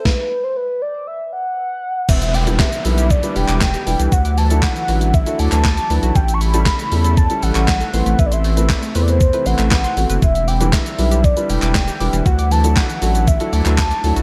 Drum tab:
CC |----------------|x---------------|----------------|----------------|
HH |----------------|-xox-xox-xox-xox|-xox-xox-xox-xox|-xox-xox-xox-xox|
SH |----------------|xxxxxxxxxxxxxxxx|xxxxxxxxxxxxxxxx|xxxxxxxxxxxxxxxx|
CP |----------------|----x------xx---|----x------xx---|----x------xx---|
SD |o---------------|----o-------o---|----o-------o---|----o-------o---|
BD |o---------------|o---o---o---o---|o---o---o---o---|o---o---o---o---|

CC |----------------|----------------|----------------|
HH |-xox-xox-xox-xox|-xox-xox-xox-xox|-xox-xox-xox-xox|
SH |xxxxxxxxxxxxxxxx|xxxxxxxxxxxxxxxx|xxxxxxxxxxxxxxxx|
CP |----x------xx---|----x------xx---|----x------xx---|
SD |----o-------o---|----o-------o---|----o-------o---|
BD |o---o---o---o---|o---o---o---o---|o---o---o---o---|